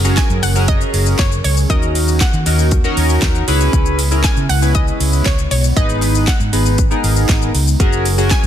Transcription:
Already playing: fingered electric bass F#1, analog synth pad F#3 C#4 G#4 A#4, impact
0.04 analog polysynth C#4 F#4 G#4 A#4, shaker
0.17 synth pluck G#5, kick, snare, clap, closed hi-hat, shaker
0.30 fingered electric bass F#2, shaker
0.43 fingered electric bass F#1, synth pluck F#5, open hi-hat, shaker
0.55 analog polysynth C#4 F#4 G#4 A#4, shaker
0.68 synth pluck D#5, kick, closed hi-hat, shaker
0.81 shaker
0.94 fingered electric bass F#1, open hi-hat, shaker
1.06 shaker
1.19 fingered electric bass F#1, synth pluck C#5, kick, snare, clap, closed hi-hat, shaker
1.32 shaker
1.44 fingered electric bass C#2, synth pluck C#5, open hi-hat, shaker
1.57 shaker
1.70 fingered electric bass D#2, analog synth pad D#3 A#3 F#4, analog polysynth C#4 D#4 F#4 A#4, synth pluck D#5, kick, closed hi-hat, shaker
1.82 shaker
1.95 open hi-hat, shaker
2.08 shaker
2.21 synth pluck F#5, kick, snare, clap, closed hi-hat, shaker
2.33 fingered electric bass D#3, shaker
2.46 fingered electric bass D#2, analog polysynth C#4 D#4 F#4 A#4, open hi-hat, shaker
2.59 shaker
2.71 kick, closed hi-hat, shaker
2.84 analog polysynth C#4 D#4 F#4 A#4, shaker
2.97 fingered electric bass D#2, open hi-hat, shaker
3.09 shaker
3.22 fingered electric bass D#2, kick, snare, clap, closed hi-hat, shaker
3.35 shaker
3.48 fingered electric bass C#2, analog synth pad C#3 G#3 B3 E4, analog polysynth C#4 E4 G#4 B4, open hi-hat, shaker
3.61 shaker
3.73 fingered electric bass C#2, kick, closed hi-hat, shaker
3.86 shaker
3.99 open hi-hat, shaker
4.11 analog polysynth C#4 E4 G#4 A#4, shaker
4.24 synth pluck G#5, kick, snare, clap, closed hi-hat, shaker
4.37 fingered electric bass C#3, shaker
4.49 fingered electric bass C#2, synth pluck F#5, open hi-hat, shaker
4.62 analog polysynth C#4 E4 G#4 B4, shaker
4.75 synth pluck D#5, kick, closed hi-hat, shaker
4.88 shaker
5.00 fingered electric bass C#2, open hi-hat, shaker
5.13 shaker
5.26 fingered electric bass C#2, synth pluck C#5, kick, snare, clap, closed hi-hat, shaker
5.39 shaker
5.51 fingered electric bass B1, synth pluck C#5, open hi-hat, shaker
5.64 shaker
5.76 fingered electric bass G#1, analog polysynth B3 D#4 G#4 B4, analog synth pad D#4, synth pluck D#5, kick, closed hi-hat, shaker
5.89 shaker
6.02 clap, open hi-hat, shaker
6.15 shaker
6.27 synth pluck F#5, kick, snare, clap, closed hi-hat, shaker
6.40 fingered electric bass G#2, shaker
6.53 fingered electric bass G#1, analog polysynth B3 D#4 G#4 B4, open hi-hat, shaker
6.66 shaker
6.78 kick, closed hi-hat, shaker
6.91 analog polysynth B3 D#4 G#4 A#4, shaker
7.04 fingered electric bass G#1, open hi-hat, shaker
7.16 shaker
7.29 fingered electric bass G#1, kick, snare, clap, closed hi-hat, shaker
7.42 shaker
7.54 fingered electric bass C#2, open hi-hat, shaker
7.67 shaker
7.80 fingered electric bass F#1, analog synth pad F#3 C#4 G#4 A#4, analog polysynth C#4 F#4 G#4 A#4, kick, closed hi-hat, shaker
7.93 shaker
8.05 open hi-hat, shaker
8.18 analog polysynth C#4 F#4 G#4 A#4, shaker
8.31 synth pluck G#5, kick, snare, clap, closed hi-hat, shaker
8.43 fingered electric bass F#2, shaker

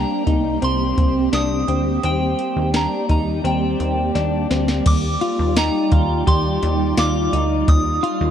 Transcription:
Already playing: ambient pad G3 A#3 C4 G4, clean electric guitar D4, synth bell A#5
0.27 analog synth bass C2, clean electric guitar D#4, kick, closed hi-hat
0.62 analog synth bass C2, clean electric guitar C4, synth bell C6, closed hi-hat
0.98 analog synth bass C2, kick, closed hi-hat
1.33 analog synth bass C2, clean electric guitar D4, synth bell D#6, snare, closed hi-hat
1.68 analog synth bass D2, clean electric guitar C4, closed hi-hat
2.03 analog synth bass D#2, ambient pad G3 A#3 D5, clean electric guitar C4, synth bell G5, closed hi-hat
2.39 closed hi-hat
2.56 analog synth bass D#2
2.74 clean electric guitar D4, synth bell A#5, snare, closed hi-hat
3.09 analog synth bass D#2, clean electric guitar D#4, synth bell A#5, kick, closed hi-hat
3.44 analog synth bass D#2, clean electric guitar C4, synth bell G5, closed hi-hat
3.80 analog synth bass D#2, closed hi-hat
4.15 analog synth bass D#2, clean electric guitar D4, snare, closed hi-hat
4.50 analog synth bass D2, clean electric guitar C4, snare, closed hi-hat
4.68 snare
4.86 analog synth bass D#2, ambient pad G3 D#4 F4 D5, synth bell D6, kick, closed hi-hat, crash
5.21 clean electric guitar F4, closed hi-hat
5.39 analog synth bass D#2
5.56 clean electric guitar D#4, vibraphone G5, synth bell A#5, snare, closed hi-hat, tambourine
5.92 analog synth bass D#2, clean electric guitar F4, kick, closed hi-hat
6.27 analog synth bass D#2, clean electric guitar G4, synth bell C6, kick, closed hi-hat
6.63 analog synth bass D#2, closed hi-hat
6.97 analog synth bass D#2, clean electric guitar F4, synth bell D6, snare, closed hi-hat, tambourine
7.33 analog synth bass D2, clean electric guitar D#4, closed hi-hat
7.68 analog synth bass D#2, ambient pad G#3 C4 D#4, synth bell D#6, kick, closed hi-hat
8.03 clean electric guitar F4, closed hi-hat
8.21 analog synth bass D#2

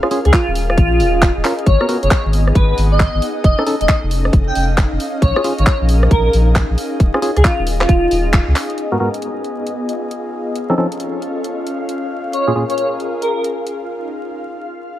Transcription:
Already playing: analog synth pad C#4 G#4 A#4 F5, ambient pad F4 F5
0.03 synth stab C#4 F4 G#4, cross-stick
0.11 synth stab C#4 F4 G#4, open hi-hat
0.25 sub bass C#2, digital synth lead G#4, cross-stick, closed hi-hat
0.33 digital synth lead F4, kick, clap, closed hi-hat
0.47 sub bass D#1
0.55 analog synth pad D#5, open hi-hat
0.70 digital synth lead F4, cross-stick
0.78 sub bass A#1, kick, closed hi-hat
1.00 sub bass D#1, open hi-hat
1.22 kick, clap, closed hi-hat
1.36 sub bass D#1
1.44 synth stab C#4 F4 A#4, clap, open hi-hat
1.59 closed hi-hat
1.66 sub bass G#1, analog synth pad B3, ambient pad D#4 D#5, digital synth lead C#5, kick, closed hi-hat
1.81 synth stab B3 F#4 A#4, cross-stick
1.89 synth stab B3 F#4 A#4, open hi-hat
2.03 sub bass F#1, digital synth lead C#5, closed hi-hat
2.11 digital synth lead C#5, kick, clap, closed hi-hat
2.25 sub bass G#1
2.33 open hi-hat
2.48 analog synth pad F#5, cross-stick
2.55 sub bass G#1, digital synth lead B4, kick, closed hi-hat
2.70 digital synth lead B4
2.77 sub bass G#1, open hi-hat
2.92 digital synth lead D#5
3.00 kick, clap, closed hi-hat
3.14 sub bass G#1
3.22 open hi-hat
3.44 sub bass F1, analog synth pad C#4, digital synth lead D#5, kick, closed hi-hat
3.58 synth stab C#4 D#4 A4, cross-stick
3.66 synth stab C#4 D#4 A4, open hi-hat
3.81 sub bass D#1, digital synth lead D#5, closed hi-hat
3.87 analog synth pad A4, kick, clap, closed hi-hat
4.03 sub bass F1
4.11 open hi-hat
4.16 analog synth pad F5
4.25 cross-stick
4.33 sub bass F1, kick, closed hi-hat
4.47 digital synth lead G5
4.55 sub bass F1, digital synth lead G5, open hi-hat
4.78 kick, clap, closed hi-hat
4.92 sub bass F1
5.00 open hi-hat
5.22 sub bass A#1, analog synth pad G#4, digital synth lead C#5, kick, closed hi-hat
5.36 synth stab C#4 F4 G#4, cross-stick
5.44 synth stab C#4 F4 G#4, open hi-hat
5.53 analog synth pad A#4
5.58 sub bass G#1, digital synth lead C#5, closed hi-hat
5.67 digital synth lead C#5, kick, clap, closed hi-hat
5.81 sub bass A#1
5.89 open hi-hat
6.03 cross-stick
6.11 sub bass A#1, digital synth lead A#4, kick, closed hi-hat
6.26 digital synth lead A#4
6.33 sub bass A#1, open hi-hat
6.55 kick, clap, closed hi-hat
6.70 sub bass A#1
6.78 open hi-hat
7.00 sub bass D#1, kick, closed hi-hat
7.14 synth stab C#4 F4 G#4, cross-stick
7.22 synth stab C#4 F4 G#4, open hi-hat
7.36 sub bass C#2, digital synth lead G#4, cross-stick, closed hi-hat
7.44 digital synth lead F4, analog synth pad D#5, kick, clap, closed hi-hat
7.59 sub bass D#1
7.67 open hi-hat
7.81 digital synth lead F4, cross-stick, clap
7.89 sub bass D#1, kick, closed hi-hat
8.11 sub bass D#1, open hi-hat
8.33 kick, clap, closed hi-hat
8.47 sub bass C#2
8.56 clap, open hi-hat
8.70 closed hi-hat
8.78 analog synth pad B3, ambient pad F4 F5, closed hi-hat
8.92 synth stab G#2 B3 F#4 A#4
9.00 synth stab G#2 B3 F#4 A#4
9.14 closed hi-hat
9.22 closed hi-hat
9.44 closed hi-hat
9.67 closed hi-hat
9.89 closed hi-hat
10.11 closed hi-hat
10.55 analog synth pad C#4, closed hi-hat
10.70 synth stab F3 C4 C#4 D#4 A4, analog synth pad A4
10.78 synth stab F3 C4 C#4 D#4 A4
10.92 closed hi-hat
11.00 closed hi-hat
11.22 closed hi-hat
11.26 analog synth pad F5
11.44 closed hi-hat
11.67 closed hi-hat
11.89 closed hi-hat
12.33 digital synth lead C#5, closed hi-hat
12.41 analog synth pad A#4
12.47 synth stab A#2 C#4 F4 G#4
12.55 synth stab A#2 C#4 F4 G#4, analog synth pad G#4
12.69 digital synth lead C#5, closed hi-hat
12.78 digital synth lead C#5, closed hi-hat
13.00 closed hi-hat
13.22 digital synth lead A#4, closed hi-hat
13.36 digital synth lead A#4
13.44 closed hi-hat
13.67 closed hi-hat
13.89 analog synth pad D#4

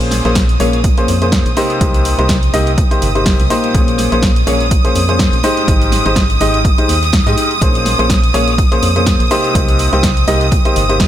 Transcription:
Already playing: fm bass A#1, upright piano A#2 A#3 C#4 G#4 C5, violin section D#6
0.01 closed hi-hat
0.11 snare, closed hi-hat, open hi-hat
0.25 fm bass A#1, upright piano A#2 A#3 C#4 G#4 C5, closed hi-hat
0.35 kick, snare, closed hi-hat
0.49 closed hi-hat
0.60 fm bass A#1, upright piano A#2 A#3 C#4 G#4 C#5, closed hi-hat, open hi-hat
0.73 closed hi-hat
0.84 kick, closed hi-hat
0.97 upright piano A#2 A#3 C#4 G#4 C5, closed hi-hat
1.08 fm bass F2, closed hi-hat, open hi-hat
1.22 upright piano A#2 A#3 C#4 G#4 C5, closed hi-hat
1.32 kick, snare, closed hi-hat
1.46 fm bass A#1, closed hi-hat
1.57 upright piano C3 A#3 D#4 G4 C5, snare, closed hi-hat, open hi-hat
1.70 closed hi-hat
1.81 fm bass C2, upright piano C3 A#3 D#4 G4 C5, kick, closed hi-hat
1.94 closed hi-hat
2.05 closed hi-hat, open hi-hat
2.19 fm bass C2, upright piano C3 A#3 D#4 G4 C5, closed hi-hat
2.29 kick, snare, closed hi-hat
2.43 closed hi-hat
2.54 fm bass C2, upright piano C3 A#3 D#4 G4 D#5, snare, closed hi-hat, open hi-hat
2.67 closed hi-hat
2.78 kick, closed hi-hat
2.91 upright piano C3 A#3 D#4 G4 C5, closed hi-hat
3.02 fm bass G1, closed hi-hat, open hi-hat
3.15 upright piano C3 A#3 D#4 G4 C5, closed hi-hat
3.26 kick, snare, closed hi-hat, open hi-hat
3.40 fm bass C2, closed hi-hat
3.50 upright piano A#2 A#3 D#4 G4 C5, closed hi-hat, open hi-hat
3.64 closed hi-hat
3.74 fm bass A#1, upright piano G#4, kick, closed hi-hat
3.88 closed hi-hat
3.98 snare, closed hi-hat, open hi-hat
4.12 fm bass A#1, upright piano A#2 A#3 C#4 G#4 C5, closed hi-hat
4.22 kick, snare, closed hi-hat
4.36 closed hi-hat
4.47 fm bass A#1, upright piano A#2 A#3 C#4 G#4 C#5, closed hi-hat, open hi-hat
4.60 closed hi-hat
4.71 kick, closed hi-hat
4.85 upright piano A#2 A#3 C#4 G#4 C5, closed hi-hat
4.95 fm bass F2, closed hi-hat, open hi-hat
5.09 upright piano A#2 A#3 C#4 G#4 C5, closed hi-hat
5.19 kick, snare, closed hi-hat
5.33 fm bass A#1, closed hi-hat
5.43 upright piano G#2 G#3 D#4 G4 C5, snare, closed hi-hat, open hi-hat
5.57 closed hi-hat
5.68 fm bass G#1, upright piano G#2 G#3 D#4 G4 C5, kick, closed hi-hat
5.82 closed hi-hat
5.92 snare, closed hi-hat, open hi-hat
6.06 fm bass G#1, upright piano G#2 G#3 D#4 G4 C5, closed hi-hat
6.15 kick, snare, closed hi-hat
6.30 closed hi-hat
6.40 fm bass G#1, upright piano G#2 G#3 D#4 G4 D#5, snare, closed hi-hat, open hi-hat
6.54 closed hi-hat
6.65 kick, closed hi-hat
6.78 upright piano G#2 G#3 D#4 G4 C5, closed hi-hat
6.89 fm bass D#2, snare, closed hi-hat, open hi-hat
7.03 snare, closed hi-hat
7.12 kick, snare, closed hi-hat
7.26 fm bass G#2, upright piano G#2 G#3 D#4 G4 D#5, snare, closed hi-hat
7.37 closed hi-hat, open hi-hat
7.51 closed hi-hat
7.61 fm bass A#1, upright piano A#2 A#3 C#4 G#4 C5, kick, closed hi-hat
7.75 closed hi-hat
7.86 snare, closed hi-hat, open hi-hat
7.99 fm bass A#1, upright piano A#2 A#3 C#4 G#4 C5, closed hi-hat
8.10 kick, snare, closed hi-hat
8.24 closed hi-hat
8.34 fm bass A#1, upright piano A#2 A#3 C#4 G#4 C#5, closed hi-hat, open hi-hat
8.48 closed hi-hat
8.58 kick, closed hi-hat
8.72 upright piano A#2 A#3 C#4 G#4 C5, closed hi-hat
8.82 fm bass F2, closed hi-hat, open hi-hat
8.96 upright piano A#2 A#3 C#4 G#4 C5, closed hi-hat
9.06 kick, snare, closed hi-hat
9.20 fm bass A#1, closed hi-hat
9.31 upright piano C3 A#3 D#4 G4 C5, snare, closed hi-hat, open hi-hat
9.44 closed hi-hat
9.55 fm bass C2, upright piano A#3 G4 C5, kick, closed hi-hat
9.68 closed hi-hat
9.79 closed hi-hat, open hi-hat
9.93 fm bass C2, upright piano C3 A#3 D#4 G4 C5, closed hi-hat
10.03 kick, snare, closed hi-hat
10.17 closed hi-hat
10.27 fm bass C2, upright piano C3 A#3 D#4 G4 D#5, snare, closed hi-hat, open hi-hat
10.41 closed hi-hat
10.52 kick, closed hi-hat
10.65 upright piano C3 A#3 D#4 G4 C5, closed hi-hat
10.76 fm bass G1, closed hi-hat, open hi-hat
10.89 upright piano C3 A#3 D#4 G4 C5, closed hi-hat
11.00 kick, snare, closed hi-hat, open hi-hat

